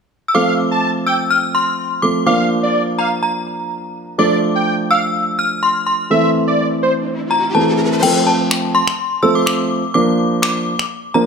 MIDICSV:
0, 0, Header, 1, 6, 480
1, 0, Start_track
1, 0, Key_signature, -1, "major"
1, 0, Tempo, 480000
1, 347, Time_signature, 4, 2, 24, 8
1, 11262, End_track
2, 0, Start_track
2, 0, Title_t, "Synth bell"
2, 0, Program_c, 0, 98
2, 284, Note_on_c, 0, 88, 68
2, 346, Note_on_c, 0, 86, 93
2, 348, Note_off_c, 0, 88, 0
2, 1065, Note_on_c, 0, 88, 94
2, 1088, Note_off_c, 0, 86, 0
2, 1305, Note_on_c, 0, 89, 104
2, 1313, Note_off_c, 0, 88, 0
2, 1546, Note_on_c, 0, 84, 92
2, 1553, Note_off_c, 0, 89, 0
2, 2023, Note_on_c, 0, 86, 85
2, 2041, Note_off_c, 0, 84, 0
2, 2253, Note_off_c, 0, 86, 0
2, 2265, Note_on_c, 0, 86, 90
2, 2985, Note_on_c, 0, 82, 77
2, 3008, Note_off_c, 0, 86, 0
2, 3214, Note_off_c, 0, 82, 0
2, 3226, Note_on_c, 0, 82, 74
2, 3906, Note_off_c, 0, 82, 0
2, 4188, Note_on_c, 0, 86, 81
2, 4906, Note_on_c, 0, 88, 90
2, 4929, Note_off_c, 0, 86, 0
2, 5388, Note_on_c, 0, 89, 98
2, 5401, Note_off_c, 0, 88, 0
2, 5627, Note_on_c, 0, 84, 85
2, 5634, Note_off_c, 0, 89, 0
2, 5850, Note_off_c, 0, 84, 0
2, 5865, Note_on_c, 0, 84, 76
2, 6313, Note_off_c, 0, 84, 0
2, 7306, Note_on_c, 0, 82, 83
2, 7547, Note_on_c, 0, 81, 80
2, 7554, Note_off_c, 0, 82, 0
2, 8026, Note_on_c, 0, 79, 86
2, 8041, Note_off_c, 0, 81, 0
2, 8135, Note_off_c, 0, 79, 0
2, 8266, Note_on_c, 0, 81, 87
2, 8713, Note_off_c, 0, 81, 0
2, 8746, Note_on_c, 0, 84, 92
2, 9193, Note_off_c, 0, 84, 0
2, 9226, Note_on_c, 0, 88, 91
2, 9283, Note_off_c, 0, 88, 0
2, 9353, Note_on_c, 0, 86, 84
2, 9451, Note_off_c, 0, 86, 0
2, 9463, Note_on_c, 0, 86, 94
2, 9930, Note_off_c, 0, 86, 0
2, 9942, Note_on_c, 0, 86, 94
2, 10412, Note_off_c, 0, 86, 0
2, 10424, Note_on_c, 0, 86, 94
2, 11144, Note_on_c, 0, 82, 88
2, 11167, Note_off_c, 0, 86, 0
2, 11252, Note_off_c, 0, 82, 0
2, 11262, End_track
3, 0, Start_track
3, 0, Title_t, "Analog synth lead"
3, 0, Program_c, 1, 81
3, 346, Note_on_c, 1, 77, 97
3, 535, Note_off_c, 1, 77, 0
3, 714, Note_on_c, 1, 81, 74
3, 902, Note_off_c, 1, 81, 0
3, 1066, Note_on_c, 1, 79, 84
3, 1166, Note_off_c, 1, 79, 0
3, 2265, Note_on_c, 1, 77, 99
3, 2454, Note_off_c, 1, 77, 0
3, 2632, Note_on_c, 1, 74, 70
3, 2822, Note_off_c, 1, 74, 0
3, 2985, Note_on_c, 1, 77, 72
3, 3086, Note_off_c, 1, 77, 0
3, 4186, Note_on_c, 1, 74, 96
3, 4375, Note_off_c, 1, 74, 0
3, 4554, Note_on_c, 1, 79, 71
3, 4743, Note_off_c, 1, 79, 0
3, 4907, Note_on_c, 1, 77, 84
3, 5007, Note_off_c, 1, 77, 0
3, 6106, Note_on_c, 1, 76, 97
3, 6295, Note_off_c, 1, 76, 0
3, 6476, Note_on_c, 1, 74, 68
3, 6663, Note_off_c, 1, 74, 0
3, 6827, Note_on_c, 1, 72, 79
3, 6927, Note_off_c, 1, 72, 0
3, 11262, End_track
4, 0, Start_track
4, 0, Title_t, "Grand piano"
4, 0, Program_c, 2, 0
4, 343, Note_on_c, 2, 53, 60
4, 347, Note_on_c, 2, 57, 56
4, 350, Note_on_c, 2, 60, 54
4, 353, Note_on_c, 2, 69, 65
4, 1992, Note_off_c, 2, 53, 0
4, 1994, Note_off_c, 2, 57, 0
4, 1995, Note_off_c, 2, 60, 0
4, 1997, Note_off_c, 2, 69, 0
4, 2025, Note_on_c, 2, 53, 45
4, 2026, Note_on_c, 2, 57, 43
4, 2028, Note_on_c, 2, 60, 44
4, 2030, Note_on_c, 2, 69, 50
4, 2248, Note_off_c, 2, 53, 0
4, 2263, Note_on_c, 2, 53, 64
4, 2266, Note_on_c, 2, 58, 56
4, 2267, Note_off_c, 2, 57, 0
4, 2267, Note_off_c, 2, 60, 0
4, 2268, Note_off_c, 2, 69, 0
4, 2270, Note_on_c, 2, 62, 57
4, 2273, Note_on_c, 2, 70, 67
4, 4147, Note_off_c, 2, 53, 0
4, 4148, Note_off_c, 2, 58, 0
4, 4150, Note_off_c, 2, 62, 0
4, 4152, Note_off_c, 2, 70, 0
4, 4183, Note_on_c, 2, 53, 63
4, 4186, Note_on_c, 2, 57, 57
4, 4189, Note_on_c, 2, 62, 55
4, 4193, Note_on_c, 2, 69, 68
4, 6066, Note_off_c, 2, 53, 0
4, 6068, Note_off_c, 2, 57, 0
4, 6070, Note_off_c, 2, 62, 0
4, 6071, Note_off_c, 2, 69, 0
4, 6103, Note_on_c, 2, 52, 64
4, 6106, Note_on_c, 2, 57, 58
4, 6110, Note_on_c, 2, 60, 59
4, 6112, Note_on_c, 2, 69, 69
4, 7516, Note_off_c, 2, 52, 0
4, 7518, Note_off_c, 2, 57, 0
4, 7520, Note_off_c, 2, 60, 0
4, 7521, Note_off_c, 2, 69, 0
4, 7546, Note_on_c, 2, 52, 57
4, 7548, Note_on_c, 2, 57, 51
4, 7549, Note_on_c, 2, 60, 53
4, 7550, Note_on_c, 2, 69, 66
4, 8014, Note_off_c, 2, 57, 0
4, 8015, Note_off_c, 2, 60, 0
4, 8017, Note_off_c, 2, 69, 0
4, 8027, Note_off_c, 2, 52, 0
4, 8027, Note_on_c, 2, 53, 75
4, 8029, Note_on_c, 2, 57, 66
4, 8030, Note_on_c, 2, 60, 66
4, 8032, Note_on_c, 2, 69, 78
4, 8795, Note_off_c, 2, 53, 0
4, 8796, Note_off_c, 2, 57, 0
4, 8797, Note_off_c, 2, 60, 0
4, 8798, Note_off_c, 2, 69, 0
4, 9226, Note_on_c, 2, 53, 70
4, 9227, Note_on_c, 2, 57, 67
4, 9229, Note_on_c, 2, 60, 65
4, 9231, Note_on_c, 2, 69, 79
4, 9807, Note_off_c, 2, 53, 0
4, 9807, Note_off_c, 2, 57, 0
4, 9808, Note_off_c, 2, 60, 0
4, 9809, Note_off_c, 2, 69, 0
4, 9947, Note_on_c, 2, 53, 71
4, 9949, Note_on_c, 2, 58, 65
4, 9950, Note_on_c, 2, 62, 65
4, 9952, Note_on_c, 2, 70, 76
4, 10715, Note_off_c, 2, 53, 0
4, 10716, Note_off_c, 2, 58, 0
4, 10717, Note_off_c, 2, 62, 0
4, 10718, Note_off_c, 2, 70, 0
4, 11146, Note_on_c, 2, 53, 70
4, 11148, Note_on_c, 2, 58, 64
4, 11149, Note_on_c, 2, 62, 64
4, 11151, Note_on_c, 2, 70, 78
4, 11262, Note_off_c, 2, 53, 0
4, 11262, Note_off_c, 2, 58, 0
4, 11262, Note_off_c, 2, 62, 0
4, 11262, Note_off_c, 2, 70, 0
4, 11262, End_track
5, 0, Start_track
5, 0, Title_t, "Riser"
5, 0, Program_c, 3, 103
5, 6107, Note_on_c, 3, 60, 76
5, 8027, Note_off_c, 3, 60, 0
5, 11262, End_track
6, 0, Start_track
6, 0, Title_t, "Drums"
6, 8028, Note_on_c, 9, 49, 83
6, 8128, Note_off_c, 9, 49, 0
6, 8511, Note_on_c, 9, 26, 116
6, 8611, Note_off_c, 9, 26, 0
6, 8875, Note_on_c, 9, 26, 65
6, 8975, Note_off_c, 9, 26, 0
6, 9470, Note_on_c, 9, 26, 106
6, 9570, Note_off_c, 9, 26, 0
6, 10430, Note_on_c, 9, 26, 110
6, 10530, Note_off_c, 9, 26, 0
6, 10794, Note_on_c, 9, 26, 64
6, 10894, Note_off_c, 9, 26, 0
6, 11262, End_track
0, 0, End_of_file